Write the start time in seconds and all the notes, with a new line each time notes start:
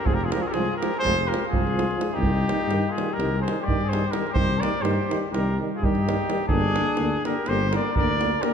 0.05 F1 F3 G#3 F4 G#4, davul low
0.13 G4 A#4
0.21 F4 G#4, davul high
0.32 F3 G#3 G4 A#4, davul high
0.42 F4 G#4
0.47 G4 A#4
0.52 C2 F3 G#3 F4 G#4, davul high
0.77 G4 A#4
0.81 F3 G#3, davul high
0.94 G#4, davul high
0.99 F1 G#3 C5
1.05 F3, davul high, davul low
1.20 davul high
1.26 F3 G4 A#4
1.31 G#3, davul high
1.44 F4, davul high
1.49 C2 F3 G#3 G#4
1.53 davul low
1.67 davul high
1.75 F3 G#3, davul high
1.91 davul high
1.97 F3 G#3
2.01 davul high
2.11 D#4 F4 G4 G#4, davul high
2.18 C2 D#3 G3
2.23 davul low
2.48 D#3 G3, davul high
2.61 davul high
2.67 G2 D#3 G3, davul high
2.90 F4 G#4
2.97 D#3 G3, davul high
3.10 G4 A#4
3.18 C2 D#3 G3, davul high
3.38 G#4 C5
3.45 D#3 G3, davul high
3.60 G3 G4 D5
3.67 G2 D#3, davul low
3.81 G#4, davul high
3.89 G3 C5
3.93 D#3, davul high
4.04 G4, davul high
4.11 D#3 G3 A#4, davul high
4.27 G4, davul high
4.33 C2 D#3 G3 C5, davul low
4.58 A#4 D5
4.62 D#3 G3, davul high
4.74 davul high
4.81 G2 D#3 G3 G4 C5, davul high
5.11 D#3 G3, davul high
5.31 C2 D#3 G3 G4 A#4, davul high
5.60 D#3 G3
5.75 F4 G#4
5.81 G2 D#3 G3 D#4 G4, davul low
5.95 davul high
6.06 D#3 G3, davul high
6.28 D#3 G3, davul high
6.46 G1 D3 D4 G#4, davul low
6.51 A#3
6.76 D3 A#3, davul high
6.86 davul high
6.97 D2 D3 A#3, davul high
7.25 D3 A#3 G4 A#4, davul high
7.46 G1 D3 A#3 G4 C5, davul high
7.71 A#3 A#4, davul high
7.76 D3 D5
7.94 A#3 A#4 D5, davul low
7.99 D2 D3
8.09 davul high
8.21 D3 A#3, davul high
8.31 davul high
8.41 D3 A#3 G4 A#4, davul high